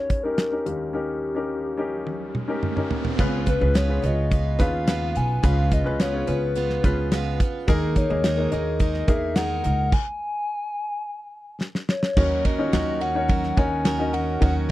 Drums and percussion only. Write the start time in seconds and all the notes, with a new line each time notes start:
0.10 kick, closed hi-hat
0.38 snare, closed hi-hat
0.66 closed hi-hat
2.07 high tom
2.35 mid tom
2.63 mid tom
2.77 mid tom
2.91 floor tom
3.05 floor tom
3.19 kick, crash
3.47 kick, closed hi-hat
3.75 snare, closed hi-hat
4.04 closed hi-hat
4.31 kick, closed hi-hat
4.60 kick, closed hi-hat
4.88 snare, closed hi-hat
5.16 closed hi-hat
5.43 kick, closed hi-hat
5.71 kick, closed hi-hat
6.00 snare, closed hi-hat
6.27 closed hi-hat
6.55 closed hi-hat
6.69 snare
6.84 kick, closed hi-hat
7.12 snare, closed hi-hat
7.40 kick, closed hi-hat
7.68 kick, closed hi-hat
7.96 kick, closed hi-hat
8.24 snare, closed hi-hat
8.52 closed hi-hat
8.80 kick, closed hi-hat
8.94 snare
9.08 kick, closed hi-hat
9.36 snare, closed hi-hat
9.64 closed hi-hat
9.92 kick, crash
11.61 snare
11.75 snare
11.89 snare
12.03 snare
12.17 kick, crash
12.45 kick, ride
12.73 snare, ride
13.01 ride
13.29 kick, ride
13.43 snare
13.57 kick, ride
13.85 snare, ride
14.14 ride
14.42 kick, ride